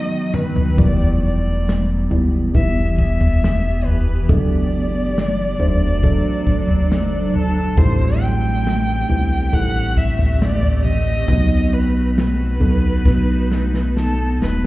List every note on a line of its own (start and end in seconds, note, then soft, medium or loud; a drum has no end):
0.00 0.75 D#3 medium
0.00 0.80 D#3 medium
0.00 0.75 F#3 medium
0.00 0.80 F#3 medium
0.00 0.77 A3 medium
0.00 0.78 B3 medium
0.00 0.69 D#4 medium
0.00 0.80 F#4 medium
0.00 0.69 B4 medium
0.00 0.36 D#5 loud
0.34 0.80 B4 loud
0.34 mid tom medium
0.56 floor tom medium
0.77 2.07 E1 loud
0.77 2.06 E3 medium
0.77 4.26 E3 medium
0.77 2.04 G3 medium
0.77 2.04 B3 medium
0.77 4.26 B3 medium
0.77 2.04 E4 medium
0.77 4.26 G4 loud
0.77 0.85 A#4 medium
0.77 1.22 D5 loud
0.77 kick loud
0.77 floor tom loud
0.77 shaker medium
0.85 2.07 B4 medium
1.00 shaker medium
1.22 2.07 D5 loud
1.22 shaker soft
1.44 shaker medium
1.66 snare loud
1.66 shaker medium
1.88 shaker soft
2.10 2.51 F#1 medium
2.10 2.52 G3 medium
2.10 2.52 B3 medium
2.10 2.52 E4 medium
2.10 2.53 D5 medium
2.10 floor tom medium
2.10 shaker medium
2.32 shaker medium
2.54 4.25 E1 loud
2.54 4.20 G3 medium
2.54 4.21 B3 medium
2.54 4.21 E4 medium
2.54 4.21 B4 medium
2.54 2.96 E5 loud
2.54 kick loud
2.54 shaker medium
2.76 shaker soft
2.97 3.86 E5 loud
2.97 kick medium
2.97 shaker medium
3.20 floor tom medium
3.20 shaker medium
3.42 snare loud
3.42 shaker medium
3.64 shaker medium
3.85 4.31 B4 loud
3.85 floor tom medium
4.07 shaker medium
4.29 5.56 F#1 loud
4.29 5.53 F#3 medium
4.29 7.74 F#3 loud
4.29 5.53 A3 medium
4.29 7.73 D4 medium
4.29 5.53 D4 medium
4.29 7.74 A4 loud
4.29 5.53 A4 medium
4.29 7.36 D5 loud
4.29 kick loud
4.29 floor tom loud
4.29 shaker medium
4.50 shaker medium
4.72 shaker soft
4.93 shaker medium
5.15 snare loud
5.15 shaker medium
5.37 shaker soft
5.59 6.21 E1 medium
5.59 6.01 F#3 medium
5.59 6.01 A3 medium
5.59 6.01 D4 medium
5.59 6.01 C5 loud
5.59 floor tom medium
5.59 shaker soft
5.81 shaker medium
6.03 7.68 F#3 medium
6.03 7.68 A3 medium
6.03 7.68 D4 medium
6.03 7.68 A4 loud
6.03 kick loud
6.03 shaker medium
6.25 shaker soft
6.46 7.30 F#1 medium
6.46 kick medium
6.46 shaker soft
6.68 floor tom medium
6.68 shaker medium
6.91 snare loud
6.91 shaker medium
7.13 shaker medium
7.34 7.74 G1 loud
7.34 7.79 A4 loud
7.34 floor tom medium
7.56 shaker medium
7.77 9.05 A1 loud
7.77 9.05 A2 medium
7.77 9.02 G3 medium
7.77 11.25 A3 medium
7.77 9.02 C4 medium
7.77 11.25 C4 medium
7.77 9.02 E4 medium
7.77 11.25 G4 loud
7.77 9.02 A4 loud
7.77 8.22 C5 loud
7.77 kick loud
7.77 floor tom loud
7.77 shaker medium
8.00 shaker medium
8.21 9.55 G5 loud
8.21 shaker soft
8.44 shaker medium
8.65 snare loud
8.65 shaker medium
8.87 shaker soft
9.09 9.50 B1 medium
9.09 9.50 G3 medium
9.09 9.51 C4 medium
9.09 9.51 E4 medium
9.09 9.51 B4 medium
9.09 floor tom medium
9.09 shaker soft
9.31 shaker medium
9.52 11.24 A1 loud
9.52 11.19 G3 medium
9.52 11.19 C4 medium
9.52 11.19 E4 medium
9.52 11.20 A4 medium
9.52 9.99 F#5 loud
9.52 kick loud
9.52 shaker medium
9.75 shaker soft
9.96 10.43 E5 loud
9.96 kick medium
9.96 shaker soft
10.19 floor tom medium
10.19 shaker medium
10.41 10.84 D5 loud
10.41 snare loud
10.41 shaker medium
10.63 floor tom medium
10.63 shaker medium
10.84 11.75 D#5 loud
10.84 floor tom medium
11.07 shaker medium
11.28 12.57 B1 loud
11.28 12.57 B2 medium
11.28 12.54 F#3 medium
11.28 12.54 B3 medium
11.28 14.67 B3 medium
11.28 12.54 D#4 medium
11.28 14.67 D#4 medium
11.28 14.67 F#4 loud
11.28 12.54 B4 loud
11.28 kick loud
11.28 floor tom loud
11.28 shaker medium
11.51 shaker medium
11.73 12.17 B4 loud
11.73 shaker soft
11.95 shaker medium
12.17 13.92 B4 loud
12.17 snare loud
12.17 shaker medium
12.39 shaker soft
12.60 13.02 B1 loud
12.60 13.03 F#3 medium
12.60 13.03 B3 medium
12.60 13.03 D#4 medium
12.60 13.03 A4 medium
12.60 floor tom medium
12.60 shaker medium
12.84 shaker medium
13.05 14.37 B1 loud
13.05 14.67 F#3 medium
13.05 14.67 B3 medium
13.05 14.67 D#4 medium
13.05 14.67 B4 medium
13.05 kick loud
13.05 snare medium
13.05 shaker medium
13.30 shaker soft
13.51 snare medium
13.51 shaker soft
13.73 snare medium
13.73 shaker medium
13.97 14.38 A4 loud
13.97 snare medium
13.97 shaker medium
14.20 shaker medium
14.41 14.67 D#1 loud
14.41 14.62 B4 loud
14.41 snare loud